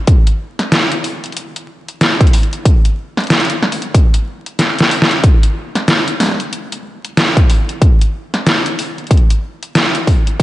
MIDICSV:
0, 0, Header, 1, 2, 480
1, 0, Start_track
1, 0, Tempo, 645161
1, 56, Time_signature, 4, 2, 24, 8
1, 7758, End_track
2, 0, Start_track
2, 0, Title_t, "Drums"
2, 54, Note_on_c, 9, 42, 82
2, 55, Note_on_c, 9, 36, 119
2, 129, Note_off_c, 9, 42, 0
2, 130, Note_off_c, 9, 36, 0
2, 200, Note_on_c, 9, 42, 48
2, 274, Note_off_c, 9, 42, 0
2, 440, Note_on_c, 9, 40, 41
2, 440, Note_on_c, 9, 42, 35
2, 515, Note_off_c, 9, 40, 0
2, 515, Note_off_c, 9, 42, 0
2, 535, Note_on_c, 9, 38, 110
2, 535, Note_on_c, 9, 42, 77
2, 610, Note_off_c, 9, 38, 0
2, 610, Note_off_c, 9, 42, 0
2, 682, Note_on_c, 9, 42, 51
2, 756, Note_off_c, 9, 42, 0
2, 775, Note_on_c, 9, 46, 66
2, 850, Note_off_c, 9, 46, 0
2, 921, Note_on_c, 9, 42, 35
2, 936, Note_off_c, 9, 42, 0
2, 936, Note_on_c, 9, 42, 29
2, 985, Note_off_c, 9, 42, 0
2, 985, Note_on_c, 9, 42, 24
2, 1016, Note_off_c, 9, 42, 0
2, 1016, Note_on_c, 9, 42, 80
2, 1090, Note_off_c, 9, 42, 0
2, 1161, Note_on_c, 9, 42, 51
2, 1236, Note_off_c, 9, 42, 0
2, 1402, Note_on_c, 9, 42, 35
2, 1476, Note_off_c, 9, 42, 0
2, 1496, Note_on_c, 9, 38, 108
2, 1496, Note_on_c, 9, 42, 74
2, 1570, Note_off_c, 9, 38, 0
2, 1570, Note_off_c, 9, 42, 0
2, 1641, Note_on_c, 9, 36, 96
2, 1642, Note_on_c, 9, 42, 50
2, 1689, Note_off_c, 9, 42, 0
2, 1689, Note_on_c, 9, 42, 38
2, 1715, Note_off_c, 9, 36, 0
2, 1737, Note_off_c, 9, 42, 0
2, 1737, Note_on_c, 9, 42, 34
2, 1737, Note_on_c, 9, 46, 72
2, 1810, Note_off_c, 9, 42, 0
2, 1810, Note_on_c, 9, 42, 28
2, 1811, Note_off_c, 9, 46, 0
2, 1882, Note_off_c, 9, 42, 0
2, 1882, Note_on_c, 9, 42, 37
2, 1956, Note_off_c, 9, 42, 0
2, 1975, Note_on_c, 9, 36, 119
2, 1976, Note_on_c, 9, 42, 85
2, 2050, Note_off_c, 9, 36, 0
2, 2050, Note_off_c, 9, 42, 0
2, 2121, Note_on_c, 9, 42, 52
2, 2195, Note_off_c, 9, 42, 0
2, 2361, Note_on_c, 9, 40, 43
2, 2361, Note_on_c, 9, 42, 16
2, 2384, Note_off_c, 9, 42, 0
2, 2384, Note_on_c, 9, 42, 19
2, 2408, Note_off_c, 9, 42, 0
2, 2408, Note_on_c, 9, 42, 21
2, 2432, Note_off_c, 9, 42, 0
2, 2432, Note_on_c, 9, 42, 24
2, 2435, Note_off_c, 9, 40, 0
2, 2456, Note_off_c, 9, 42, 0
2, 2456, Note_on_c, 9, 38, 117
2, 2456, Note_on_c, 9, 42, 81
2, 2491, Note_off_c, 9, 42, 0
2, 2491, Note_on_c, 9, 42, 28
2, 2529, Note_off_c, 9, 42, 0
2, 2529, Note_on_c, 9, 42, 30
2, 2531, Note_off_c, 9, 38, 0
2, 2565, Note_off_c, 9, 42, 0
2, 2565, Note_on_c, 9, 42, 32
2, 2601, Note_off_c, 9, 42, 0
2, 2601, Note_on_c, 9, 42, 53
2, 2676, Note_off_c, 9, 42, 0
2, 2697, Note_on_c, 9, 40, 56
2, 2769, Note_on_c, 9, 46, 66
2, 2771, Note_off_c, 9, 40, 0
2, 2842, Note_on_c, 9, 42, 40
2, 2843, Note_off_c, 9, 46, 0
2, 2916, Note_off_c, 9, 42, 0
2, 2935, Note_on_c, 9, 36, 97
2, 2936, Note_on_c, 9, 42, 82
2, 3009, Note_off_c, 9, 36, 0
2, 3010, Note_off_c, 9, 42, 0
2, 3080, Note_on_c, 9, 42, 57
2, 3155, Note_off_c, 9, 42, 0
2, 3321, Note_on_c, 9, 42, 36
2, 3395, Note_off_c, 9, 42, 0
2, 3415, Note_on_c, 9, 38, 66
2, 3415, Note_on_c, 9, 42, 80
2, 3489, Note_off_c, 9, 38, 0
2, 3489, Note_off_c, 9, 42, 0
2, 3560, Note_on_c, 9, 42, 53
2, 3574, Note_on_c, 9, 38, 83
2, 3635, Note_off_c, 9, 42, 0
2, 3649, Note_off_c, 9, 38, 0
2, 3655, Note_on_c, 9, 46, 67
2, 3729, Note_off_c, 9, 46, 0
2, 3734, Note_on_c, 9, 38, 96
2, 3801, Note_on_c, 9, 42, 37
2, 3808, Note_off_c, 9, 38, 0
2, 3876, Note_off_c, 9, 42, 0
2, 3895, Note_on_c, 9, 36, 120
2, 3895, Note_on_c, 9, 42, 84
2, 3969, Note_off_c, 9, 42, 0
2, 3970, Note_off_c, 9, 36, 0
2, 4041, Note_on_c, 9, 42, 54
2, 4115, Note_off_c, 9, 42, 0
2, 4281, Note_on_c, 9, 40, 42
2, 4281, Note_on_c, 9, 42, 40
2, 4355, Note_off_c, 9, 40, 0
2, 4355, Note_off_c, 9, 42, 0
2, 4374, Note_on_c, 9, 38, 117
2, 4374, Note_on_c, 9, 42, 82
2, 4449, Note_off_c, 9, 38, 0
2, 4449, Note_off_c, 9, 42, 0
2, 4521, Note_on_c, 9, 42, 55
2, 4596, Note_off_c, 9, 42, 0
2, 4614, Note_on_c, 9, 40, 51
2, 4614, Note_on_c, 9, 46, 68
2, 4635, Note_off_c, 9, 40, 0
2, 4635, Note_on_c, 9, 40, 43
2, 4657, Note_off_c, 9, 40, 0
2, 4657, Note_on_c, 9, 40, 35
2, 4677, Note_off_c, 9, 40, 0
2, 4677, Note_on_c, 9, 40, 29
2, 4688, Note_off_c, 9, 46, 0
2, 4698, Note_off_c, 9, 40, 0
2, 4698, Note_on_c, 9, 40, 24
2, 4720, Note_off_c, 9, 40, 0
2, 4720, Note_on_c, 9, 40, 20
2, 4741, Note_off_c, 9, 40, 0
2, 4741, Note_on_c, 9, 40, 15
2, 4761, Note_on_c, 9, 42, 40
2, 4815, Note_off_c, 9, 40, 0
2, 4836, Note_off_c, 9, 42, 0
2, 4856, Note_on_c, 9, 42, 86
2, 4931, Note_off_c, 9, 42, 0
2, 5001, Note_on_c, 9, 42, 57
2, 5076, Note_off_c, 9, 42, 0
2, 5242, Note_on_c, 9, 42, 39
2, 5316, Note_off_c, 9, 42, 0
2, 5336, Note_on_c, 9, 38, 118
2, 5336, Note_on_c, 9, 42, 83
2, 5411, Note_off_c, 9, 38, 0
2, 5411, Note_off_c, 9, 42, 0
2, 5481, Note_on_c, 9, 36, 104
2, 5482, Note_on_c, 9, 42, 54
2, 5555, Note_off_c, 9, 36, 0
2, 5556, Note_off_c, 9, 42, 0
2, 5577, Note_on_c, 9, 46, 65
2, 5651, Note_off_c, 9, 46, 0
2, 5722, Note_on_c, 9, 42, 40
2, 5796, Note_off_c, 9, 42, 0
2, 5815, Note_on_c, 9, 36, 125
2, 5816, Note_on_c, 9, 42, 85
2, 5890, Note_off_c, 9, 36, 0
2, 5891, Note_off_c, 9, 42, 0
2, 5963, Note_on_c, 9, 42, 54
2, 6037, Note_off_c, 9, 42, 0
2, 6203, Note_on_c, 9, 40, 40
2, 6203, Note_on_c, 9, 42, 39
2, 6278, Note_off_c, 9, 40, 0
2, 6278, Note_off_c, 9, 42, 0
2, 6298, Note_on_c, 9, 38, 120
2, 6298, Note_on_c, 9, 42, 83
2, 6373, Note_off_c, 9, 38, 0
2, 6373, Note_off_c, 9, 42, 0
2, 6443, Note_on_c, 9, 42, 54
2, 6517, Note_off_c, 9, 42, 0
2, 6538, Note_on_c, 9, 46, 63
2, 6612, Note_off_c, 9, 46, 0
2, 6683, Note_on_c, 9, 42, 18
2, 6746, Note_off_c, 9, 42, 0
2, 6746, Note_on_c, 9, 42, 24
2, 6775, Note_on_c, 9, 36, 109
2, 6776, Note_off_c, 9, 42, 0
2, 6776, Note_on_c, 9, 42, 91
2, 6826, Note_off_c, 9, 42, 0
2, 6826, Note_on_c, 9, 42, 31
2, 6850, Note_off_c, 9, 36, 0
2, 6900, Note_off_c, 9, 42, 0
2, 6922, Note_on_c, 9, 42, 54
2, 6996, Note_off_c, 9, 42, 0
2, 7162, Note_on_c, 9, 42, 39
2, 7237, Note_off_c, 9, 42, 0
2, 7256, Note_on_c, 9, 38, 121
2, 7256, Note_on_c, 9, 42, 85
2, 7330, Note_off_c, 9, 38, 0
2, 7330, Note_off_c, 9, 42, 0
2, 7402, Note_on_c, 9, 42, 55
2, 7476, Note_off_c, 9, 42, 0
2, 7495, Note_on_c, 9, 36, 67
2, 7496, Note_on_c, 9, 46, 60
2, 7569, Note_off_c, 9, 36, 0
2, 7570, Note_off_c, 9, 46, 0
2, 7641, Note_on_c, 9, 42, 39
2, 7716, Note_off_c, 9, 42, 0
2, 7734, Note_on_c, 9, 36, 127
2, 7758, Note_off_c, 9, 36, 0
2, 7758, End_track
0, 0, End_of_file